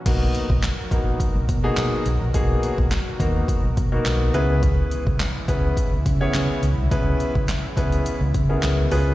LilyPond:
<<
  \new Staff \with { instrumentName = "Grand piano" } { \time 4/4 \key b \major \tempo 4 = 105 <ais b dis' fis' ais'>8. r8. <ais b dis' fis' ais'>8. r8 <ais b dis' fis' gis'>8. r8 | <ais b dis' fis' gis'>8. r8. <ais b dis' fis' ais'>8. r8 <ais b dis' fis' ais'>8. <b cis' e' gis' b'>8~ | <b cis' e' gis' b'>4 r8 <b cis' e' gis' b'>8. r8 <b cis' e' gis' cis''>8. r8 | <b cis' e' gis' b'>8. r8. <b cis' e' gis' b'>8. r8 <b cis' e' gis' ais'>8. <b cis' eis' gis' b'>8 | }
  \new Staff \with { instrumentName = "Supersaw synth" } { \clef bass \time 4/4 \key b \major << { <fis fis'>1~ | <fis fis'>2.~ <fis fis'>8 <e e'>8~ | <e e'>1~ | <e e'>2.~ <e e'>8 <eis eis'>8 | } \\ { <b, dis ais'>1~ | <b, dis ais'>2.~ <b, dis ais'>8 <cis gis b>8~ | <cis gis b>1~ | <cis gis b>1 | } >> }
  \new Staff \with { instrumentName = "Fingered electric bass" } { \clef bass \time 4/4 \key b \major b,,8 r16 b,,16 r8 ais,,8 r16 b,,16 b,8 b,16 r16 b,,16 ais,,16 | b,,8 r16 b,,16 r8 dis,8 r16 b,,16 b,8 b,,8 cis,8~ | cis,8 r16 cis,16 r8 cis,8 r16 cis,16 cis8 cis16 r16 cis,16 c,16 | cis,8 r16 cis,16 r8 cis,8 r16 cis,16 cis8 cis,8 cis,8 | }
  \new DrumStaff \with { instrumentName = "Drums" } \drummode { \time 4/4 <cymc hh bd>8 hh16 bd16 <hc hh sn>8 <hh bd>8 <hh bd>8 <hh bd>8 <hc hh sn>8 hh8 | <hh bd>8 hh16 bd16 <hc hh sn>8 <hh bd>8 <hh bd>8 <hh bd>8 <hc hh sn>8 hh8 | <hh bd>8 hh16 bd16 <hc hh sn>8 <hh bd>8 <hh bd>8 <hh bd>8 <hc hh sn>8 hh8 | <hh bd>8 hh16 bd16 <hc hh sn>8 <hh bd>16 hh16 hh8 <hh bd>8 <hc hh sn>8 hho8 | }
>>